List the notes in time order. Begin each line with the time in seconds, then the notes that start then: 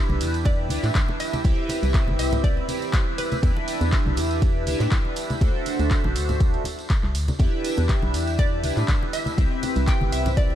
Already playing: D4 E4 G4 B4 E5
0.09 B1, muted conga, high conga
0.21 E2, open hi-hat, ride, tambourine
0.34 closed hi-hat, tambourine
0.45 D5, kick, closed hi-hat, ride, tambourine, muted conga
0.69 D2 D4 E4 G4 B4 E5, open hi-hat, ride, tambourine, muted conga, high conga
0.83 A2, clap, closed hi-hat, tambourine
0.95 kick, clap, closed hi-hat, ride, tambourine, low conga
1.08 muted conga
1.20 E5, open hi-hat, ride, tambourine
1.33 closed hi-hat, tambourine, muted conga, high conga
1.44 C2 C4 E4 G4 B4 E5, kick, closed hi-hat, ride, tambourine
1.69 open hi-hat, ride, tambourine, muted conga
1.83 C2, closed hi-hat, tambourine
1.94 kick, clap, closed hi-hat, ride, tambourine, muted conga
2.08 G1, high conga
2.19 C2 E5, open hi-hat, ride, tambourine
2.32 closed hi-hat, tambourine, muted conga, low conga
2.44 D5, kick, closed hi-hat, ride, tambourine
2.57 muted conga
2.68 C4 E4 G4 B4 E5, open hi-hat, ride, tambourine, high conga
2.82 closed hi-hat, tambourine
2.93 kick, clap, closed hi-hat, ride, tambourine, muted conga
3.18 B4, open hi-hat, ride, tambourine, muted conga
3.32 closed hi-hat, tambourine, high conga
3.42 E2 D4 E4 G4 B4 E5, kick, closed hi-hat, ride, tambourine
3.57 muted conga
3.68 open hi-hat, ride, tambourine
3.81 E2, closed hi-hat, tambourine, muted conga
3.92 kick, clap, closed hi-hat, ride, tambourine
4.06 B1, high conga
4.17 E2, open hi-hat, ride, tambourine, muted conga
4.31 closed hi-hat, tambourine
4.42 kick, closed hi-hat, ride, tambourine, muted conga
4.66 D2 D4 E4 G4 B4 E5, open hi-hat, ride, tambourine, high conga
4.80 A2, clap, closed hi-hat, tambourine, muted conga
4.91 kick, clap, closed hi-hat, ride, low conga
5.05 muted conga
5.16 open hi-hat, ride, tambourine
5.30 closed hi-hat, tambourine, high conga
5.40 D2 D4 F#4 A4 C5 E5, kick, closed hi-hat, ride, tambourine, muted conga
5.66 open hi-hat, ride, tambourine, muted conga
5.79 D2, closed hi-hat, tambourine
5.91 kick, clap, closed hi-hat, ride, tambourine
6.04 A1, muted conga, high conga
6.16 D2, open hi-hat, ride, tambourine
6.29 closed hi-hat, tambourine, muted conga, low conga
6.40 kick, closed hi-hat, ride, tambourine
6.54 closed hi-hat
6.64 open hi-hat, ride, tambourine, muted conga, high conga
6.79 closed hi-hat, tambourine
6.90 kick, clap, closed hi-hat, ride, tambourine, muted conga
7.03 C2, clap
7.15 D2, open hi-hat, ride, tambourine
7.28 closed hi-hat, tambourine, muted conga, high conga
7.39 E2 D4 E4 G4 B4 E5, kick, closed hi-hat, ride, tambourine, muted conga
7.64 open hi-hat, ride, tambourine
7.77 E2, closed hi-hat, tambourine, muted conga
7.89 kick, clap, closed hi-hat, ride
8.02 B1, muted conga, high conga
8.14 E2, open hi-hat, ride, tambourine
8.27 closed hi-hat, tambourine
8.39 D5, kick, closed hi-hat, ride, muted conga
8.63 D2 D4 E4 G4 B4 E5, open hi-hat, ride, tambourine, muted conga, high conga
8.77 A2, clap, closed hi-hat, tambourine
8.88 kick, clap, closed hi-hat, ride, tambourine, low conga
9.03 muted conga
9.13 E5, open hi-hat, ride, tambourine
9.26 closed hi-hat, tambourine, muted conga, high conga
9.37 C2 C4 E4 G4 B4 E5, kick, closed hi-hat, ride, tambourine
9.63 open hi-hat, ride, tambourine, muted conga
9.76 C2, closed hi-hat, tambourine
9.87 G5, kick, clap, closed hi-hat, ride, tambourine, muted conga
10.01 G1, high conga
10.12 C2 E5, open hi-hat, ride, tambourine
10.26 closed hi-hat, tambourine, muted conga, low conga
10.37 D5, kick, closed hi-hat, ride, tambourine
10.50 muted conga